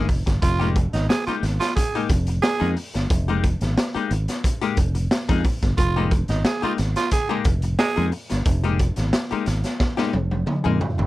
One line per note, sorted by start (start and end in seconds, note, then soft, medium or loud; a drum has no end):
0.09 0.24 F1 medium
0.09 muted hollow-body jazz guitar stroke soft
0.09 kick loud
0.09 open hi-hat medium
0.26 0.40 G1 medium
0.26 muted hollow-body jazz guitar stroke medium
0.26 kick medium
0.26 snare soft
0.26 closed hi-hat medium
0.42 0.86 F1 loud
0.42 0.69 F4 loud
0.42 muted hollow-body jazz guitar stroke soft
0.42 kick loud
0.42 closed hi-hat medium
0.59 0.76 G#3 medium
0.59 0.76 A#3 medium
0.59 0.76 D#4 medium
0.59 0.75 G4 medium
0.59 closed hi-hat soft
0.76 muted hollow-body jazz guitar stroke soft
0.76 kick medium
0.76 closed hi-hat medium
0.93 1.07 G#1 medium
0.93 1.06 D#4 medium
0.93 muted hollow-body jazz guitar stroke medium
0.93 snare soft
0.93 closed hi-hat medium
1.09 1.23 G#4 loud
1.09 muted hollow-body jazz guitar stroke soft
1.09 snare loud
1.09 closed hi-hat medium
1.26 1.43 G#3 medium
1.26 1.44 A#3 medium
1.26 1.43 D#4 medium
1.26 1.36 F4 medium
1.26 1.43 G4 medium
1.26 muted fingered electric bass stroke soft
1.26 closed hi-hat soft
1.43 1.58 G#1 loud
1.43 muted hollow-body jazz guitar stroke soft
1.43 snare soft
1.43 closed hi-hat medium
1.60 1.73 F4 loud
1.60 muted hollow-body jazz guitar stroke soft
1.60 snare soft
1.60 closed hi-hat medium
1.76 2.03 G#4 loud
1.76 muted hollow-body jazz guitar stroke soft
1.76 kick medium
1.76 closed hi-hat loud
1.95 2.09 G#3 medium
1.95 2.10 A#3 medium
1.95 2.10 D#4 medium
1.95 2.10 G4 medium
1.95 closed hi-hat soft
2.09 2.38 F1 loud
2.09 muted hollow-body jazz guitar stroke medium
2.09 kick loud
2.09 closed hi-hat medium
2.27 muted hollow-body jazz guitar stroke soft
2.27 closed hi-hat medium
2.42 2.69 G#4 loud
2.42 muted hollow-body jazz guitar stroke soft
2.42 snare loud
2.42 closed hi-hat medium
2.60 2.75 F2 loud
2.60 2.75 G#3 medium
2.60 2.75 A#3 medium
2.60 2.76 D#4 medium
2.60 2.76 G#4 medium
2.60 closed hi-hat soft
2.76 muted hollow-body jazz guitar stroke soft
2.76 open hi-hat medium
2.94 3.08 G1 medium
2.94 muted hollow-body jazz guitar stroke soft
2.94 snare soft
2.94 closed hi-hat medium
3.10 3.54 F1 loud
3.10 muted hollow-body jazz guitar stroke soft
3.10 kick loud
3.10 closed hi-hat medium
3.28 3.43 G#3 medium
3.28 3.44 A#3 medium
3.28 3.44 D#4 medium
3.28 3.44 G4 medium
3.28 closed hi-hat soft
3.44 muted hollow-body jazz guitar stroke soft
3.44 kick medium
3.44 closed hi-hat medium
3.61 3.75 G#1 medium
3.61 muted hollow-body jazz guitar stroke medium
3.61 snare soft
3.61 closed hi-hat medium
3.77 muted hollow-body jazz guitar stroke soft
3.77 snare loud
3.77 closed hi-hat medium
3.95 4.11 G#3 medium
3.95 4.11 A#3 medium
3.95 4.11 D#4 medium
3.95 4.10 G4 medium
3.95 muted fingered electric bass stroke soft
3.95 closed hi-hat soft
4.11 4.26 G#1 loud
4.11 muted hollow-body jazz guitar stroke soft
4.11 closed hi-hat medium
4.28 muted hollow-body jazz guitar stroke medium
4.28 snare soft
4.28 closed hi-hat medium
4.44 muted hollow-body jazz guitar stroke soft
4.44 kick loud
4.44 closed hi-hat loud
4.61 4.76 G#3 medium
4.61 4.77 A#3 medium
4.61 4.77 D#4 medium
4.61 4.77 G4 loud
4.61 closed hi-hat soft
4.77 5.06 F1 loud
4.77 muted hollow-body jazz guitar stroke soft
4.77 kick loud
4.77 closed hi-hat medium
4.95 muted hollow-body jazz guitar stroke medium
4.95 closed hi-hat medium
5.11 muted hollow-body jazz guitar stroke soft
5.11 snare loud
5.11 closed hi-hat medium
5.29 5.43 F2 loud
5.29 5.43 G#3 medium
5.29 5.44 A#3 medium
5.29 5.44 D#4 medium
5.29 5.44 G#4 medium
5.29 kick loud
5.29 snare soft
5.29 closed hi-hat soft
5.44 muted hollow-body jazz guitar stroke medium
5.44 kick loud
5.44 open hi-hat medium
5.62 5.76 G1 medium
5.62 muted hollow-body jazz guitar stroke soft
5.62 kick medium
5.62 snare soft
5.62 closed hi-hat medium
5.77 6.22 F1 loud
5.77 6.05 F4 loud
5.77 muted hollow-body jazz guitar stroke soft
5.77 kick loud
5.77 closed hi-hat medium
5.96 6.10 G#3 medium
5.96 6.12 A#3 medium
5.96 6.12 D#4 medium
5.96 6.12 G4 medium
6.11 muted hollow-body jazz guitar stroke soft
6.11 kick loud
6.11 closed hi-hat medium
6.28 6.43 G#1 medium
6.28 6.42 D#4 medium
6.28 muted hollow-body jazz guitar stroke medium
6.28 snare soft
6.28 closed hi-hat medium
6.45 6.59 G#4 medium
6.45 muted hollow-body jazz guitar stroke soft
6.45 snare loud
6.45 closed hi-hat medium
6.62 6.77 G#3 medium
6.62 6.77 A#3 medium
6.62 6.78 D#4 medium
6.62 6.73 F4 medium
6.62 6.78 G4 medium
6.62 muted fingered electric bass stroke soft
6.62 closed hi-hat soft
6.78 6.94 G#1 loud
6.78 muted hollow-body jazz guitar stroke soft
6.78 snare soft
6.78 closed hi-hat medium
6.96 7.09 F4 loud
6.96 muted hollow-body jazz guitar stroke soft
6.96 snare soft
6.96 closed hi-hat medium
7.11 7.39 G#4 loud
7.11 muted hollow-body jazz guitar stroke soft
7.11 kick medium
7.11 closed hi-hat loud
7.29 7.44 G#3 medium
7.29 7.45 A#3 medium
7.29 7.45 D#4 medium
7.29 7.45 G4 medium
7.45 7.74 F1 medium
7.45 muted hollow-body jazz guitar stroke soft
7.45 kick loud
7.45 closed hi-hat medium
7.62 muted hollow-body jazz guitar stroke soft
7.62 closed hi-hat medium
7.78 8.06 G#4 loud
7.78 muted hollow-body jazz guitar stroke soft
7.78 snare loud
7.78 closed hi-hat medium
7.96 8.11 F2 loud
7.96 8.11 G#3 medium
7.96 8.11 A#3 medium
7.96 8.12 D#4 medium
7.96 8.12 G#4 medium
7.96 closed hi-hat soft
8.12 muted hollow-body jazz guitar stroke soft
8.12 open hi-hat medium
8.30 8.45 G1 medium
8.30 muted hollow-body jazz guitar stroke medium
8.30 snare soft
8.30 closed hi-hat medium
8.46 8.90 F1 loud
8.46 muted hollow-body jazz guitar stroke soft
8.46 kick loud
8.46 closed hi-hat medium
8.64 8.79 G#3 medium
8.64 8.79 A#3 medium
8.64 8.80 D#4 medium
8.64 8.79 G4 medium
8.64 closed hi-hat soft
8.79 muted hollow-body jazz guitar stroke soft
8.79 kick medium
8.79 closed hi-hat medium
8.96 9.11 G#1 medium
8.96 muted hollow-body jazz guitar stroke soft
8.96 snare soft
8.96 closed hi-hat medium
9.13 muted hollow-body jazz guitar stroke soft
9.13 snare loud
9.13 closed hi-hat medium
9.31 9.46 G#3 medium
9.31 9.46 A#3 medium
9.31 9.46 D#4 medium
9.31 9.47 G4 medium
9.31 muted fingered electric bass stroke soft
9.31 closed hi-hat soft
9.46 9.62 G#1 loud
9.46 muted hollow-body jazz guitar stroke soft
9.46 snare soft
9.46 closed hi-hat medium
9.64 muted hollow-body jazz guitar stroke soft
9.64 snare soft
9.64 closed hi-hat medium
9.80 muted hollow-body jazz guitar stroke medium
9.80 kick loud
9.80 snare medium
9.97 10.13 G#3 medium
9.97 10.13 A#3 medium
9.97 10.14 D#4 medium
9.97 10.13 G4 medium
9.97 snare medium
10.13 10.43 F1 medium
10.13 muted hollow-body jazz guitar stroke soft
10.13 high tom medium
10.31 muted hollow-body jazz guitar stroke soft
10.31 high tom medium
10.46 muted hollow-body jazz guitar stroke soft
10.46 mid tom medium
10.64 10.79 F2 medium
10.64 10.79 G#3 medium
10.64 10.80 A#3 medium
10.64 10.80 D#4 medium
10.64 10.80 G#4 medium
10.64 mid tom medium
10.81 muted hollow-body jazz guitar stroke soft
10.81 floor tom loud
10.98 11.07 G1 medium
10.98 muted hollow-body jazz guitar stroke medium
10.98 floor tom loud